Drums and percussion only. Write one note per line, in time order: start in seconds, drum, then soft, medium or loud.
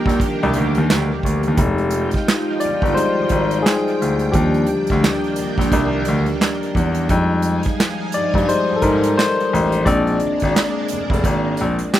0.06 kick loud
0.06 snare soft
0.06 closed hi-hat soft
0.20 kick medium
0.20 closed hi-hat medium
0.43 closed hi-hat soft
0.53 closed hi-hat medium
0.75 closed hi-hat medium
0.90 snare loud
0.90 clap medium
0.90 closed hi-hat medium
1.23 kick medium
1.23 closed hi-hat medium
1.43 closed hi-hat soft
1.57 kick loud
1.57 closed hi-hat medium
1.78 closed hi-hat soft
1.91 closed hi-hat medium
2.11 kick medium
2.11 closed hi-hat soft
2.15 snare soft
2.28 snare loud
2.28 clap medium
2.28 closed hi-hat medium
2.60 closed hi-hat medium
2.82 kick loud
2.82 closed hi-hat soft
2.97 closed hi-hat medium
3.29 kick medium
3.29 closed hi-hat medium
3.51 closed hi-hat soft
3.66 snare loud
3.66 clap medium
3.66 closed hi-hat medium
3.88 closed hi-hat soft
4.02 closed hi-hat medium
4.19 closed hi-hat medium
4.34 kick loud
4.34 closed hi-hat medium
4.54 closed hi-hat soft
4.66 closed hi-hat medium
4.87 kick medium
4.87 closed hi-hat soft
4.91 snare soft
5.04 snare loud
5.04 clap medium
5.04 closed hi-hat medium
5.24 closed hi-hat soft
5.36 closed hi-hat medium
5.58 kick loud
5.58 snare soft
5.58 closed hi-hat soft
5.72 kick medium
5.72 closed hi-hat medium
6.05 closed hi-hat medium
6.26 closed hi-hat soft
6.41 snare loud
6.41 clap medium
6.41 closed hi-hat medium
6.63 closed hi-hat soft
6.75 kick medium
6.75 closed hi-hat medium
6.94 closed hi-hat soft
7.09 kick loud
7.09 closed hi-hat medium
7.42 closed hi-hat medium
7.63 kick medium
7.63 closed hi-hat soft
7.67 snare soft
7.80 snare loud
7.80 clap medium
7.80 closed hi-hat medium
8.12 closed hi-hat medium
8.34 kick loud
8.34 closed hi-hat soft
8.49 closed hi-hat medium
8.82 kick medium
8.82 closed hi-hat medium
9.03 closed hi-hat medium
9.19 snare loud
9.19 clap medium
9.19 closed hi-hat medium
9.40 closed hi-hat soft
9.55 closed hi-hat medium
9.72 closed hi-hat soft
9.86 kick loud
9.86 closed hi-hat medium
10.07 closed hi-hat soft
10.20 closed hi-hat medium
10.40 kick medium
10.40 closed hi-hat soft
10.44 snare soft
10.56 snare loud
10.56 clap medium
10.56 closed hi-hat medium
10.88 closed hi-hat medium
11.10 kick loud
11.10 closed hi-hat medium
11.24 kick medium
11.24 closed hi-hat medium
11.57 closed hi-hat medium
11.79 closed hi-hat medium
11.94 snare loud
11.94 clap medium
11.94 closed hi-hat medium